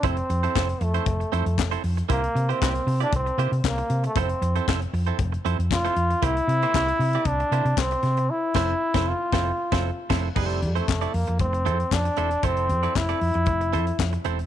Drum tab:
CC |----------------|----------------|----------------|----------------|
HH |xxxx-xxxxxxx-xox|xxxx-xoxxxxx-xxx|xxxx-xoxxxxx-xxx|xxxx-xoxxxxx-xxx|
CP |----x-------x---|----x-------x---|----x-------x---|----x-------x---|
SD |----o-------o---|----o-------o---|----o-------o---|----o-------o-o-|
BD |o---o---o---o---|o---o---o---o---|o---o---o---o---|o---o---o---o---|

CC |--x-----------x-|x---------------|----------------|
HH |----------------|-xxx-xoxxxxx-xxx|xxxx-xoxxxxx-xxx|
CP |----------------|----x-------x---|----x-------x---|
SD |--o--o--o--o--o-|----o-------o---|----o-------o---|
BD |--o--o--o--o--o-|o---o---o---o---|o---o---o---o---|